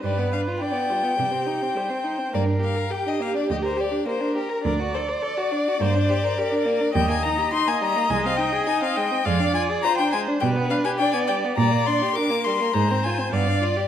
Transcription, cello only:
X:1
M:4/4
L:1/8
Q:1/4=104
K:Gphr
V:1 name="Cello" clef=bass
G,,2 z2 C,2 z2 | G,,2 z2 D,,2 z2 | D,,2 z2 G,,2 z2 | E,,2 z2 C,,2 z2 |
F,,2 z2 =B,,2 z2 | B,,2 z2 A,,2 G,,2 |]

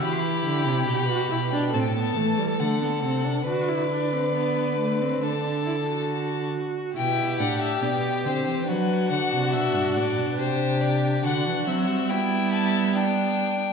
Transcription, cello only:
X:1
M:4/4
L:1/16
Q:1/4=70
K:G
V:1 name="Cello" clef=bass
E,2 D, C, B,,2 B,,2 A,,2 E,2 D,2 C,2 | D,8 D,6 z2 | B,,2 A,,2 B,,2 D, E, F,2 D, C, B,, G,, A,, B,, | C,4 D, E, F, G,8- G, |]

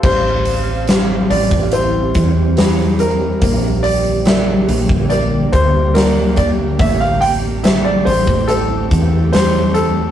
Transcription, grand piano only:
X:1
M:4/4
L:1/16
Q:1/4=71
K:Aphr
V:1 name="Grand piano"
c6 d2 c6 B2- | B2 d2 e4 d2 c2 B2 d2 | e f g2 e d c2 A4 c2 A2 |]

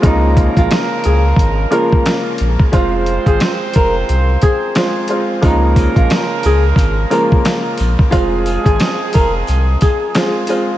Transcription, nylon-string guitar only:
X:1
M:4/4
L:1/16
Q:"Swing 16ths" 1/4=89
K:Db
V:1 name="Nylon-string guitar"
E3 F z2 A z3 B6 | F3 A z2 B z3 A3 z3 | E3 F z2 A z3 B6 | F3 A z2 B z3 A3 z3 |]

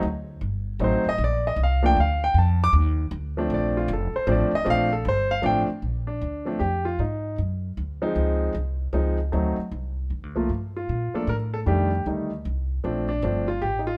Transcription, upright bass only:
X:1
M:3/4
L:1/8
Q:"Swing" 1/4=154
K:Bb
V:1 name="Upright bass" clef=bass
D,,2 G,,,2 (3A,,, ^F,,, D,,, | B,,,2 C,,2 D,,2 | F,,2 E,,2 D,,2 | B,,,2 F,,, z (3A,,, F,,, D,,, |
B,,,2 G,,,2 A,,, z | B,,,2 D,,2 F,,2 | _A,,2 _G,,2 D,,2 | _D,,2 C,,2 D,,2 |
D,, z C,,2 (3E,, D,, C,, | G,,2 B,, z A,,2 | F,,2 D,,2 C,,2 | B,,,2 G,,,2 A,,,2 |]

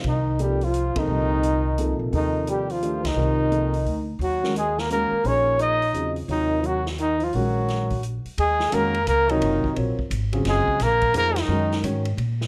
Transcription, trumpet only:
X:1
M:3/4
L:1/8
Q:"Swing" 1/4=173
K:Eblyd
V:1 name="Trumpet"
E2 G F2 E- | E4- E z | E2 G F2 E- | E4- E z |
_G2 _A B B2 | _d2 e3 z | E2 _G z E F | _G4 z2 |
[K:Ebdor] A2 B2 B E- | E2 z4 | A2 B2 B E- | E2 z4 |]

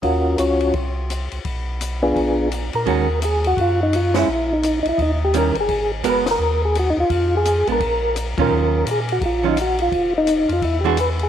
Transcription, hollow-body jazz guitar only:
X:1
M:4/4
L:1/8
Q:"Swing" 1/4=170
K:Ebm
V:1 name="Hollow-body jazz guitar"
z8 | z8 | [E,A,DG] z6 [A,D_F] | z6 [E,=G,D_F] z |
z2 [A,CGB] z4 z | z3 [A,C=D] z3 [E,G,_DF]- | [E,G,DF]2 z3 [E,G,DF] z2 | z4 z [=E,^G,=D^F] z2 |]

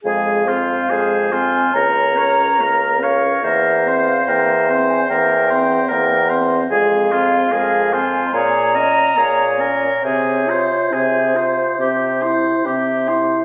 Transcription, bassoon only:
X:1
M:4/4
L:1/8
Q:1/4=71
K:Fm
V:1 name="Bassoon" clef=bass
F,,2 F,,2 D,,2 D,,2 | =E,,2 E,,2 E,,2 E,,2 | F,,2 F,,2 B,,2 B,,2 | C,2 C,2 C,2 C,2 |]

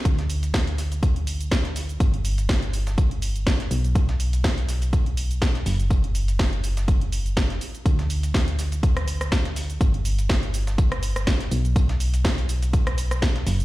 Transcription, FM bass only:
X:1
M:4/4
L:1/8
Q:"Swing 16ths" 1/4=123
K:D
V:1 name="FM bass" clef=bass
D,,8 | G,,,6- G,,, B,,,- | B,,,6- B,,, F,,,- | F,,,6- F,,, z |
D,,8 | G,,,6- G,,, B,,,- | B,,,6- B,,, F,,, |]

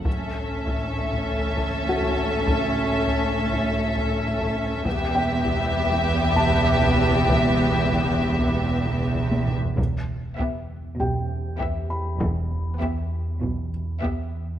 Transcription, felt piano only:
X:1
M:4/4
L:1/8
Q:1/4=99
K:Emix
V:1 name="Felt piano"
z3 e3 [Ff]2- | [Ff]4 z2 e2- | e =g4 a3- | a3 z4 z |
z4 [=G=g]3 b- | b4- b z3 |]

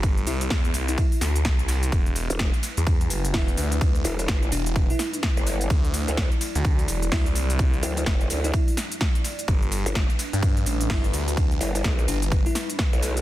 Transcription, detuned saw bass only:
X:1
M:4/4
L:1/16
Q:"Swing 16ths" 1/4=127
K:Em
V:1 name="Detuned saw bass" clef=bass
G,,,2 C,,2 E,,2 C,,2 z2 D,,2 C,,4 | E,,,3 z4 E,,3 F,,,2 E,,,2 D,,2- | D,,2 z4 E,,,3 z6 z | D,,3 z4 D,,3 E,,,2 D,,2 C,,2- |
C,,2 z12 z2 | G,,,3 z4 G,,3 A,,,2 G,,,2 D,,2- | D,,2 z4 G,,,3 z6 z |]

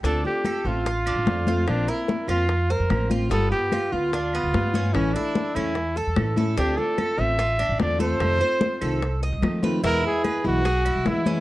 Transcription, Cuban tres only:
X:1
M:4/4
L:1/8
Q:1/4=147
K:Dm
V:1 name="Cuban tres"
D2 A2 F D2 F- | F B2 F2 c2 F | =B,2 F2 D B,2 ^C- | ^C E2 C2 A2 A |
D2 A2 F D2 A- | A c2 A2 _e2 =B | E2 =B2 ^G E2 ^C |]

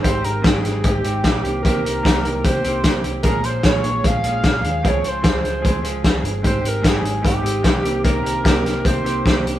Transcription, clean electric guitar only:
X:1
M:4/4
L:1/8
Q:1/4=150
K:Ab
V:1 name="Clean electric guitar"
[A,CEG] [CEG] [A,CEG] [CEG] [A,CEG] [A,CEG] [A,CEG] [C,E,B,CG] | [C,E,B,CG] [B,CG] [C,E,B,CG] [B,CG] [E,B,CG] [C,E,B,CG] [E,B,CG] [B,CG] | [B,,F,A,DA] [A,DA] [B,,F,A,DA] [A,DA] [F,A,DA] [B,,F,A,DA] [F,A,DA] [A,DA] | [D,F,A,CA] [A,CA] [D,F,A,CA] [A,CA] [F,A,CA] [D,F,A,CA] [F,A,CA] [A,CA] |
[A,CEG] [CEG] [A,CEG] [CEG] [A,CEG] [A,CEG] [A,CEG] [C,E,B,CG] | [C,E,B,CG] [B,CG] [C,E,B,CG] [B,CG] [E,B,CG] [C,E,B,CG] [E,B,CG] [B,CG] |]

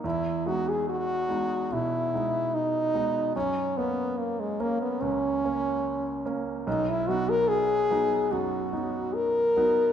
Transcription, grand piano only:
X:1
M:4/4
L:1/8
Q:1/4=72
K:F#mix
V:1 name="Grand piano"
E,, [G,B,D]2 [G,B,D] B,, [G,B,D]2 [G,B,D] | F,, [A,C]2 [A,C] C,, [A,C]2 [A,C] | B,,, [F,B,D]2 [F,B,D] F,, [F,B,D]2 [F,B,D] |]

